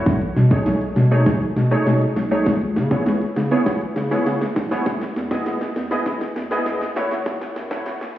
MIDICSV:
0, 0, Header, 1, 4, 480
1, 0, Start_track
1, 0, Tempo, 600000
1, 51, Time_signature, 4, 2, 24, 8
1, 6546, End_track
2, 0, Start_track
2, 0, Title_t, "Analog polysynth"
2, 0, Program_c, 0, 90
2, 408, Note_on_c, 0, 57, 97
2, 409, Note_on_c, 0, 63, 83
2, 411, Note_on_c, 0, 68, 85
2, 411, Note_on_c, 0, 73, 103
2, 636, Note_off_c, 0, 57, 0
2, 637, Note_off_c, 0, 63, 0
2, 637, Note_off_c, 0, 68, 0
2, 638, Note_off_c, 0, 73, 0
2, 889, Note_on_c, 0, 57, 98
2, 891, Note_on_c, 0, 63, 89
2, 891, Note_on_c, 0, 68, 86
2, 893, Note_on_c, 0, 73, 101
2, 1117, Note_off_c, 0, 57, 0
2, 1117, Note_off_c, 0, 63, 0
2, 1118, Note_off_c, 0, 68, 0
2, 1118, Note_off_c, 0, 73, 0
2, 1369, Note_on_c, 0, 57, 101
2, 1369, Note_on_c, 0, 63, 90
2, 1371, Note_on_c, 0, 68, 90
2, 1372, Note_on_c, 0, 73, 109
2, 1596, Note_off_c, 0, 57, 0
2, 1597, Note_off_c, 0, 63, 0
2, 1598, Note_off_c, 0, 68, 0
2, 1598, Note_off_c, 0, 73, 0
2, 1849, Note_on_c, 0, 57, 93
2, 1850, Note_on_c, 0, 63, 82
2, 1852, Note_on_c, 0, 68, 83
2, 1853, Note_on_c, 0, 73, 106
2, 1961, Note_off_c, 0, 57, 0
2, 1962, Note_off_c, 0, 63, 0
2, 1964, Note_off_c, 0, 68, 0
2, 1965, Note_off_c, 0, 73, 0
2, 2327, Note_on_c, 0, 59, 85
2, 2329, Note_on_c, 0, 64, 81
2, 2330, Note_on_c, 0, 68, 84
2, 2332, Note_on_c, 0, 73, 98
2, 2556, Note_off_c, 0, 59, 0
2, 2556, Note_off_c, 0, 64, 0
2, 2557, Note_off_c, 0, 68, 0
2, 2558, Note_off_c, 0, 73, 0
2, 2808, Note_on_c, 0, 59, 98
2, 2811, Note_on_c, 0, 64, 90
2, 2811, Note_on_c, 0, 68, 87
2, 2814, Note_on_c, 0, 73, 105
2, 3036, Note_off_c, 0, 59, 0
2, 3037, Note_off_c, 0, 64, 0
2, 3038, Note_off_c, 0, 68, 0
2, 3039, Note_off_c, 0, 73, 0
2, 3289, Note_on_c, 0, 59, 86
2, 3291, Note_on_c, 0, 64, 78
2, 3292, Note_on_c, 0, 68, 80
2, 3293, Note_on_c, 0, 73, 92
2, 3516, Note_off_c, 0, 59, 0
2, 3517, Note_off_c, 0, 64, 0
2, 3518, Note_off_c, 0, 68, 0
2, 3518, Note_off_c, 0, 73, 0
2, 3770, Note_on_c, 0, 59, 105
2, 3770, Note_on_c, 0, 64, 94
2, 3772, Note_on_c, 0, 68, 91
2, 3772, Note_on_c, 0, 73, 110
2, 3882, Note_off_c, 0, 59, 0
2, 3882, Note_off_c, 0, 64, 0
2, 3884, Note_off_c, 0, 68, 0
2, 3884, Note_off_c, 0, 73, 0
2, 4248, Note_on_c, 0, 59, 94
2, 4249, Note_on_c, 0, 64, 85
2, 4251, Note_on_c, 0, 68, 86
2, 4252, Note_on_c, 0, 75, 105
2, 4476, Note_off_c, 0, 59, 0
2, 4477, Note_off_c, 0, 64, 0
2, 4478, Note_off_c, 0, 68, 0
2, 4478, Note_off_c, 0, 75, 0
2, 4729, Note_on_c, 0, 59, 94
2, 4731, Note_on_c, 0, 64, 88
2, 4732, Note_on_c, 0, 68, 88
2, 4733, Note_on_c, 0, 75, 102
2, 4956, Note_off_c, 0, 59, 0
2, 4957, Note_off_c, 0, 64, 0
2, 4958, Note_off_c, 0, 68, 0
2, 4958, Note_off_c, 0, 75, 0
2, 5211, Note_on_c, 0, 59, 99
2, 5211, Note_on_c, 0, 64, 88
2, 5213, Note_on_c, 0, 68, 92
2, 5214, Note_on_c, 0, 75, 110
2, 5437, Note_off_c, 0, 59, 0
2, 5437, Note_off_c, 0, 64, 0
2, 5438, Note_off_c, 0, 68, 0
2, 5439, Note_off_c, 0, 75, 0
2, 5570, Note_on_c, 0, 57, 93
2, 5571, Note_on_c, 0, 64, 88
2, 5572, Note_on_c, 0, 66, 88
2, 5573, Note_on_c, 0, 73, 101
2, 6050, Note_off_c, 0, 57, 0
2, 6051, Note_off_c, 0, 64, 0
2, 6051, Note_off_c, 0, 66, 0
2, 6052, Note_off_c, 0, 73, 0
2, 6167, Note_on_c, 0, 57, 91
2, 6168, Note_on_c, 0, 64, 88
2, 6169, Note_on_c, 0, 66, 81
2, 6171, Note_on_c, 0, 73, 100
2, 6395, Note_off_c, 0, 57, 0
2, 6396, Note_off_c, 0, 64, 0
2, 6396, Note_off_c, 0, 66, 0
2, 6397, Note_off_c, 0, 73, 0
2, 6546, End_track
3, 0, Start_track
3, 0, Title_t, "Sub bass"
3, 0, Program_c, 1, 38
3, 50, Note_on_c, 1, 35, 103
3, 207, Note_off_c, 1, 35, 0
3, 290, Note_on_c, 1, 47, 101
3, 446, Note_off_c, 1, 47, 0
3, 530, Note_on_c, 1, 35, 99
3, 686, Note_off_c, 1, 35, 0
3, 769, Note_on_c, 1, 47, 111
3, 1010, Note_on_c, 1, 35, 112
3, 1022, Note_off_c, 1, 47, 0
3, 1166, Note_off_c, 1, 35, 0
3, 1250, Note_on_c, 1, 47, 91
3, 1406, Note_off_c, 1, 47, 0
3, 1489, Note_on_c, 1, 47, 100
3, 1646, Note_off_c, 1, 47, 0
3, 1730, Note_on_c, 1, 35, 96
3, 1886, Note_off_c, 1, 35, 0
3, 1971, Note_on_c, 1, 37, 111
3, 2210, Note_on_c, 1, 49, 103
3, 2222, Note_off_c, 1, 37, 0
3, 2366, Note_off_c, 1, 49, 0
3, 2449, Note_on_c, 1, 37, 109
3, 2606, Note_off_c, 1, 37, 0
3, 2690, Note_on_c, 1, 49, 99
3, 2846, Note_off_c, 1, 49, 0
3, 2930, Note_on_c, 1, 37, 109
3, 3086, Note_off_c, 1, 37, 0
3, 3169, Note_on_c, 1, 49, 93
3, 3325, Note_off_c, 1, 49, 0
3, 3409, Note_on_c, 1, 49, 106
3, 3566, Note_off_c, 1, 49, 0
3, 3650, Note_on_c, 1, 27, 92
3, 3806, Note_off_c, 1, 27, 0
3, 3890, Note_on_c, 1, 28, 111
3, 4046, Note_off_c, 1, 28, 0
3, 4127, Note_on_c, 1, 40, 106
3, 4285, Note_off_c, 1, 40, 0
3, 4368, Note_on_c, 1, 28, 103
3, 4525, Note_off_c, 1, 28, 0
3, 4608, Note_on_c, 1, 40, 106
3, 4765, Note_off_c, 1, 40, 0
3, 4849, Note_on_c, 1, 28, 106
3, 5006, Note_off_c, 1, 28, 0
3, 5088, Note_on_c, 1, 40, 91
3, 5245, Note_off_c, 1, 40, 0
3, 5329, Note_on_c, 1, 40, 109
3, 5485, Note_off_c, 1, 40, 0
3, 5567, Note_on_c, 1, 30, 104
3, 5881, Note_off_c, 1, 30, 0
3, 6046, Note_on_c, 1, 42, 108
3, 6204, Note_off_c, 1, 42, 0
3, 6288, Note_on_c, 1, 30, 102
3, 6445, Note_off_c, 1, 30, 0
3, 6546, End_track
4, 0, Start_track
4, 0, Title_t, "Drums"
4, 50, Note_on_c, 9, 36, 105
4, 51, Note_on_c, 9, 38, 85
4, 51, Note_on_c, 9, 42, 91
4, 130, Note_off_c, 9, 36, 0
4, 131, Note_off_c, 9, 38, 0
4, 131, Note_off_c, 9, 42, 0
4, 172, Note_on_c, 9, 42, 45
4, 252, Note_off_c, 9, 42, 0
4, 292, Note_on_c, 9, 38, 84
4, 292, Note_on_c, 9, 42, 76
4, 372, Note_off_c, 9, 38, 0
4, 372, Note_off_c, 9, 42, 0
4, 409, Note_on_c, 9, 36, 97
4, 411, Note_on_c, 9, 42, 52
4, 489, Note_off_c, 9, 36, 0
4, 491, Note_off_c, 9, 42, 0
4, 529, Note_on_c, 9, 42, 93
4, 531, Note_on_c, 9, 38, 86
4, 609, Note_off_c, 9, 42, 0
4, 611, Note_off_c, 9, 38, 0
4, 652, Note_on_c, 9, 42, 59
4, 732, Note_off_c, 9, 42, 0
4, 769, Note_on_c, 9, 42, 76
4, 770, Note_on_c, 9, 38, 89
4, 849, Note_off_c, 9, 42, 0
4, 850, Note_off_c, 9, 38, 0
4, 891, Note_on_c, 9, 42, 52
4, 971, Note_off_c, 9, 42, 0
4, 1010, Note_on_c, 9, 36, 92
4, 1010, Note_on_c, 9, 38, 89
4, 1012, Note_on_c, 9, 42, 91
4, 1090, Note_off_c, 9, 36, 0
4, 1090, Note_off_c, 9, 38, 0
4, 1092, Note_off_c, 9, 42, 0
4, 1132, Note_on_c, 9, 42, 53
4, 1212, Note_off_c, 9, 42, 0
4, 1252, Note_on_c, 9, 38, 91
4, 1252, Note_on_c, 9, 42, 76
4, 1332, Note_off_c, 9, 38, 0
4, 1332, Note_off_c, 9, 42, 0
4, 1371, Note_on_c, 9, 42, 58
4, 1451, Note_off_c, 9, 42, 0
4, 1492, Note_on_c, 9, 38, 95
4, 1493, Note_on_c, 9, 42, 87
4, 1572, Note_off_c, 9, 38, 0
4, 1573, Note_off_c, 9, 42, 0
4, 1612, Note_on_c, 9, 42, 54
4, 1692, Note_off_c, 9, 42, 0
4, 1731, Note_on_c, 9, 38, 91
4, 1733, Note_on_c, 9, 46, 79
4, 1811, Note_off_c, 9, 38, 0
4, 1813, Note_off_c, 9, 46, 0
4, 1854, Note_on_c, 9, 42, 51
4, 1934, Note_off_c, 9, 42, 0
4, 1970, Note_on_c, 9, 36, 107
4, 1972, Note_on_c, 9, 38, 94
4, 1973, Note_on_c, 9, 42, 93
4, 2050, Note_off_c, 9, 36, 0
4, 2052, Note_off_c, 9, 38, 0
4, 2053, Note_off_c, 9, 42, 0
4, 2093, Note_on_c, 9, 42, 48
4, 2173, Note_off_c, 9, 42, 0
4, 2211, Note_on_c, 9, 38, 92
4, 2211, Note_on_c, 9, 42, 75
4, 2291, Note_off_c, 9, 38, 0
4, 2291, Note_off_c, 9, 42, 0
4, 2328, Note_on_c, 9, 36, 100
4, 2332, Note_on_c, 9, 42, 57
4, 2408, Note_off_c, 9, 36, 0
4, 2412, Note_off_c, 9, 42, 0
4, 2450, Note_on_c, 9, 42, 95
4, 2451, Note_on_c, 9, 38, 96
4, 2530, Note_off_c, 9, 42, 0
4, 2531, Note_off_c, 9, 38, 0
4, 2571, Note_on_c, 9, 42, 56
4, 2651, Note_off_c, 9, 42, 0
4, 2691, Note_on_c, 9, 38, 103
4, 2691, Note_on_c, 9, 42, 75
4, 2771, Note_off_c, 9, 38, 0
4, 2771, Note_off_c, 9, 42, 0
4, 2810, Note_on_c, 9, 42, 56
4, 2890, Note_off_c, 9, 42, 0
4, 2930, Note_on_c, 9, 36, 94
4, 2930, Note_on_c, 9, 38, 98
4, 2932, Note_on_c, 9, 42, 91
4, 3010, Note_off_c, 9, 36, 0
4, 3010, Note_off_c, 9, 38, 0
4, 3012, Note_off_c, 9, 42, 0
4, 3050, Note_on_c, 9, 42, 52
4, 3130, Note_off_c, 9, 42, 0
4, 3168, Note_on_c, 9, 38, 98
4, 3168, Note_on_c, 9, 42, 79
4, 3248, Note_off_c, 9, 38, 0
4, 3248, Note_off_c, 9, 42, 0
4, 3290, Note_on_c, 9, 42, 61
4, 3291, Note_on_c, 9, 38, 101
4, 3370, Note_off_c, 9, 42, 0
4, 3371, Note_off_c, 9, 38, 0
4, 3411, Note_on_c, 9, 38, 103
4, 3412, Note_on_c, 9, 42, 89
4, 3491, Note_off_c, 9, 38, 0
4, 3492, Note_off_c, 9, 42, 0
4, 3531, Note_on_c, 9, 38, 101
4, 3531, Note_on_c, 9, 42, 56
4, 3611, Note_off_c, 9, 38, 0
4, 3611, Note_off_c, 9, 42, 0
4, 3650, Note_on_c, 9, 36, 98
4, 3650, Note_on_c, 9, 38, 101
4, 3652, Note_on_c, 9, 46, 79
4, 3730, Note_off_c, 9, 36, 0
4, 3730, Note_off_c, 9, 38, 0
4, 3732, Note_off_c, 9, 46, 0
4, 3770, Note_on_c, 9, 38, 96
4, 3772, Note_on_c, 9, 42, 53
4, 3850, Note_off_c, 9, 38, 0
4, 3852, Note_off_c, 9, 42, 0
4, 3889, Note_on_c, 9, 36, 110
4, 3890, Note_on_c, 9, 38, 104
4, 3890, Note_on_c, 9, 42, 96
4, 3969, Note_off_c, 9, 36, 0
4, 3970, Note_off_c, 9, 38, 0
4, 3970, Note_off_c, 9, 42, 0
4, 4011, Note_on_c, 9, 38, 104
4, 4011, Note_on_c, 9, 42, 46
4, 4091, Note_off_c, 9, 38, 0
4, 4091, Note_off_c, 9, 42, 0
4, 4131, Note_on_c, 9, 38, 101
4, 4131, Note_on_c, 9, 42, 77
4, 4211, Note_off_c, 9, 38, 0
4, 4211, Note_off_c, 9, 42, 0
4, 4248, Note_on_c, 9, 36, 101
4, 4251, Note_on_c, 9, 38, 103
4, 4251, Note_on_c, 9, 42, 56
4, 4328, Note_off_c, 9, 36, 0
4, 4331, Note_off_c, 9, 38, 0
4, 4331, Note_off_c, 9, 42, 0
4, 4369, Note_on_c, 9, 42, 95
4, 4370, Note_on_c, 9, 38, 106
4, 4449, Note_off_c, 9, 42, 0
4, 4450, Note_off_c, 9, 38, 0
4, 4490, Note_on_c, 9, 38, 102
4, 4490, Note_on_c, 9, 42, 57
4, 4570, Note_off_c, 9, 38, 0
4, 4570, Note_off_c, 9, 42, 0
4, 4608, Note_on_c, 9, 42, 81
4, 4609, Note_on_c, 9, 38, 111
4, 4688, Note_off_c, 9, 42, 0
4, 4689, Note_off_c, 9, 38, 0
4, 4728, Note_on_c, 9, 38, 108
4, 4728, Note_on_c, 9, 42, 57
4, 4808, Note_off_c, 9, 38, 0
4, 4808, Note_off_c, 9, 42, 0
4, 4848, Note_on_c, 9, 38, 112
4, 4849, Note_on_c, 9, 36, 96
4, 4849, Note_on_c, 9, 42, 93
4, 4928, Note_off_c, 9, 38, 0
4, 4929, Note_off_c, 9, 36, 0
4, 4929, Note_off_c, 9, 42, 0
4, 4969, Note_on_c, 9, 38, 105
4, 4970, Note_on_c, 9, 42, 54
4, 5049, Note_off_c, 9, 38, 0
4, 5050, Note_off_c, 9, 42, 0
4, 5089, Note_on_c, 9, 38, 111
4, 5089, Note_on_c, 9, 42, 80
4, 5169, Note_off_c, 9, 38, 0
4, 5169, Note_off_c, 9, 42, 0
4, 5208, Note_on_c, 9, 38, 112
4, 5208, Note_on_c, 9, 42, 58
4, 5288, Note_off_c, 9, 38, 0
4, 5288, Note_off_c, 9, 42, 0
4, 5329, Note_on_c, 9, 38, 117
4, 5330, Note_on_c, 9, 42, 88
4, 5409, Note_off_c, 9, 38, 0
4, 5410, Note_off_c, 9, 42, 0
4, 5449, Note_on_c, 9, 38, 112
4, 5450, Note_on_c, 9, 42, 55
4, 5529, Note_off_c, 9, 38, 0
4, 5530, Note_off_c, 9, 42, 0
4, 5570, Note_on_c, 9, 38, 119
4, 5571, Note_on_c, 9, 46, 80
4, 5650, Note_off_c, 9, 38, 0
4, 5651, Note_off_c, 9, 46, 0
4, 5690, Note_on_c, 9, 38, 108
4, 5692, Note_on_c, 9, 42, 52
4, 5770, Note_off_c, 9, 38, 0
4, 5772, Note_off_c, 9, 42, 0
4, 5809, Note_on_c, 9, 36, 110
4, 5809, Note_on_c, 9, 38, 114
4, 5810, Note_on_c, 9, 42, 96
4, 5889, Note_off_c, 9, 36, 0
4, 5889, Note_off_c, 9, 38, 0
4, 5890, Note_off_c, 9, 42, 0
4, 5931, Note_on_c, 9, 38, 108
4, 5931, Note_on_c, 9, 42, 49
4, 6011, Note_off_c, 9, 38, 0
4, 6011, Note_off_c, 9, 42, 0
4, 6050, Note_on_c, 9, 38, 111
4, 6050, Note_on_c, 9, 42, 80
4, 6130, Note_off_c, 9, 38, 0
4, 6130, Note_off_c, 9, 42, 0
4, 6168, Note_on_c, 9, 36, 100
4, 6169, Note_on_c, 9, 38, 119
4, 6169, Note_on_c, 9, 42, 55
4, 6248, Note_off_c, 9, 36, 0
4, 6249, Note_off_c, 9, 38, 0
4, 6249, Note_off_c, 9, 42, 0
4, 6288, Note_on_c, 9, 42, 100
4, 6290, Note_on_c, 9, 38, 113
4, 6368, Note_off_c, 9, 42, 0
4, 6370, Note_off_c, 9, 38, 0
4, 6410, Note_on_c, 9, 38, 116
4, 6410, Note_on_c, 9, 42, 60
4, 6490, Note_off_c, 9, 38, 0
4, 6490, Note_off_c, 9, 42, 0
4, 6546, End_track
0, 0, End_of_file